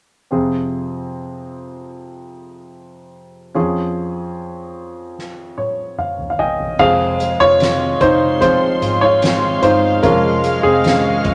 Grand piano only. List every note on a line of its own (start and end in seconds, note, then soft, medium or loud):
0.31 3.51 F2 soft
0.31 3.51 C3 soft
0.31 3.51 C4 soft
0.31 3.51 F4 soft
0.31 3.52 G#4 soft
3.55 6.75 F2 soft
3.55 6.75 F3 soft
3.55 6.75 C#4 soft
3.55 6.75 F4 soft
3.55 6.76 G#4 soft
5.58 5.95 C#5 soft
5.99 6.29 F5 soft
6.30 6.38 F5 soft
6.39 6.81 D#5 medium
6.39 6.77 G5 soft
6.39 6.77 G#5 soft
6.79 7.33 F3 soft
6.79 7.33 G#3 soft
6.79 7.34 C4 medium
6.79 7.37 G#4 medium
6.79 7.36 F5 medium
7.40 7.98 F4 medium
7.40 8.03 C#5 loud
8.01 8.39 D#4 medium
8.01 8.39 C5 medium
8.41 8.78 F3 soft
8.41 8.78 G#3 soft
8.41 8.78 C4 soft
8.41 8.99 F4 medium
8.41 9.04 C5 medium
9.01 9.59 F4 medium
9.01 9.64 C#5 medium
9.62 10.01 D#4 medium
9.62 10.04 C5 medium
10.03 11.34 F3 soft
10.03 11.34 G#3 soft
10.03 11.34 C#4 medium
10.03 10.60 A#4 medium
10.63 11.34 C4 medium
10.63 11.34 G#4 medium